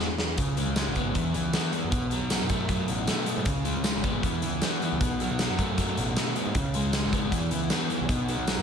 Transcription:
Already playing: picked electric bass E2
0.18 snare
0.38 picked electric bass C#2, overdriven electric guitar C#3, kick, closed hi-hat
0.57 overdriven electric guitar G#3, closed hi-hat
0.67 picked electric bass C#2
0.76 overdriven electric guitar G#3, snare, closed hi-hat, tambourine
0.87 picked electric bass G#1
0.95 overdriven electric guitar B3, kick, closed hi-hat
1.15 picked electric bass E2, overdriven electric guitar E3, kick, closed hi-hat
1.34 picked electric bass C#2, overdriven electric guitar E3, closed hi-hat
1.53 overdriven electric guitar B3, snare, closed hi-hat, tambourine
1.73 overdriven electric guitar E3, closed hi-hat
1.84 picked electric bass F#2
1.91 picked electric bass B1, overdriven electric guitar B2, kick, closed hi-hat
2.11 overdriven electric guitar F#3, closed hi-hat
2.22 picked electric bass B1
2.30 overdriven electric guitar F#3, snare, closed hi-hat, tambourine
2.42 picked electric bass F#2
2.49 overdriven electric guitar A3, kick, closed hi-hat
2.69 overdriven electric guitar F#3, kick, closed hi-hat
2.88 picked electric bass A1, overdriven electric guitar B2, closed hi-hat
3.07 overdriven electric guitar A3, snare, closed hi-hat, tambourine
3.26 overdriven electric guitar B2, closed hi-hat
3.37 picked electric bass G#2
3.45 picked electric bass C#2, overdriven electric guitar C#3, kick, closed hi-hat
3.65 overdriven electric guitar G#3, closed hi-hat
3.76 picked electric bass C#2
3.84 overdriven electric guitar G#3, snare, closed hi-hat, tambourine
3.96 picked electric bass G#1
4.04 overdriven electric guitar B3, kick, closed hi-hat
4.23 picked electric bass E2, overdriven electric guitar E3, kick, closed hi-hat
4.42 picked electric bass C#2, overdriven electric guitar E3, closed hi-hat
4.62 overdriven electric guitar B3, snare, closed hi-hat, tambourine
4.82 overdriven electric guitar E3, closed hi-hat
4.92 picked electric bass C#2
5.01 picked electric bass B1, overdriven electric guitar B2, kick, closed hi-hat
5.20 overdriven electric guitar F#3, closed hi-hat
5.31 picked electric bass B1
5.39 overdriven electric guitar F#3, snare, closed hi-hat, tambourine
5.50 picked electric bass F#2
5.59 overdriven electric guitar A3, kick, closed hi-hat
5.78 overdriven electric guitar F#3, kick, closed hi-hat
5.97 picked electric bass A1, overdriven electric guitar B2, closed hi-hat
6.16 overdriven electric guitar A3, snare, closed hi-hat, tambourine
6.36 overdriven electric guitar B2, closed hi-hat
6.46 picked electric bass G#2
6.55 picked electric bass C#2, overdriven electric guitar C#3, kick, closed hi-hat
6.74 overdriven electric guitar G#3, closed hi-hat
6.85 picked electric bass C#2
6.93 overdriven electric guitar G#3, snare, closed hi-hat, tambourine
7.05 picked electric bass G#1
7.13 overdriven electric guitar B3, kick, closed hi-hat
7.32 picked electric bass E2, overdriven electric guitar E3, kick, closed hi-hat
7.51 picked electric bass C#2, overdriven electric guitar E3, closed hi-hat
7.70 overdriven electric guitar B3, snare, closed hi-hat, tambourine
7.90 overdriven electric guitar E3, closed hi-hat
8.01 picked electric bass C2
8.09 picked electric bass B1, overdriven electric guitar B2, kick, closed hi-hat
8.28 overdriven electric guitar F#3, closed hi-hat
8.37 picked electric bass B1
8.47 overdriven electric guitar F#3, snare, closed hi-hat, tambourine
8.58 picked electric bass F#2

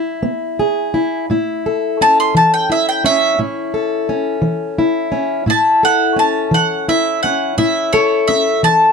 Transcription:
Already playing: steel-string acoustic guitar E4, mandolin G#4
0.23 steel-string acoustic guitar B3
0.59 steel-string acoustic guitar G#4
0.94 steel-string acoustic guitar E4
1.30 steel-string acoustic guitar A2 E4
1.66 steel-string acoustic guitar A4
2.01 steel-string acoustic guitar C#4, mandolin A5
2.20 mandolin C6
2.35 steel-string acoustic guitar E3, mandolin A5
2.54 mandolin G5
2.70 steel-string acoustic guitar E4, mandolin E5
2.89 mandolin G5
3.04 steel-string acoustic guitar C#4, mandolin E5
3.39 steel-string acoustic guitar A2 E4
3.74 steel-string acoustic guitar A4
4.09 steel-string acoustic guitar C#4
4.42 steel-string acoustic guitar E3
4.78 steel-string acoustic guitar E4
5.12 steel-string acoustic guitar C#4
5.46 steel-string acoustic guitar A2 E4, mandolin A5
5.83 steel-string acoustic guitar A4, mandolin F#5
6.16 steel-string acoustic guitar C#4, mandolin A5
6.51 steel-string acoustic guitar E3, mandolin F#5
6.88 steel-string acoustic guitar E4, mandolin E5
7.23 steel-string acoustic guitar C#4, mandolin F#5
7.58 steel-string acoustic guitar A2 E4, mandolin E5
7.93 steel-string acoustic guitar A4, mandolin C#5
8.28 steel-string acoustic guitar C#4, mandolin E5
8.63 steel-string acoustic guitar E3, mandolin A5

